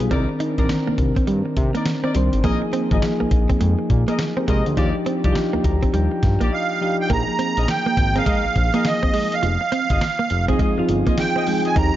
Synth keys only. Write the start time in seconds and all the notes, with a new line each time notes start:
Already playing: G3 B3 F4 G4 G#4
0.11 D#3 C4 D4 A#4
0.58 D#3 C4 D4 A#4
2.15 D#3 C4 D4 C5
2.44 F3 A#3 D#4 G#4
2.92 F3 A#3 D#4 G#4
4.38 G4 A#4
4.49 G#4 C5
4.67 C5 D#5
4.77 F3 D4 D#4 G4
5.25 F3 D4 D#4 F4
5.32 G4
5.65 A#5
5.94 G5
6.53 D#5
6.81 F3 D4 D#4 G4
7.10 F3 A#3 D#4 G#4
8.74 F3 A#3 D#4 G#4
10.49 F3 C4 D#4 G#4
10.78 F3 C4 D#4 F4
11.18 F3 C4 D#4 G#4
11.47 F3 C4 D#4 G#4
11.76 F3 C4 D#4 G4